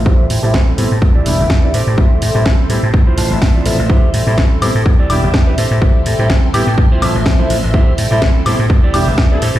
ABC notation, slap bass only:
X:1
M:4/4
L:1/16
Q:"Swing 16ths" 1/4=125
K:Am
V:1 name="Slap bass" clef=bass
A,,, z A,, A,, A,,, z A,, A,, E,, z E,,, E,,, E,, z A,, A,, | A,,, z A,, A,, A,,, z A,, A,, D,, z A,,, A,,, D,, z A,,, A,,, | A,,, z A,, A,, A,,, z A,, A,, E,, z E,,, E,,, E,, z A,, A,, | A,,, z A,, A,, A,,, z A,, A,, D,, z A,,, A,,, z2 A,,, A,,, |
A,,, z A,, A,, A,,, z A,, A,, E,, z E,,, E,,, E,, z A,, A,, |]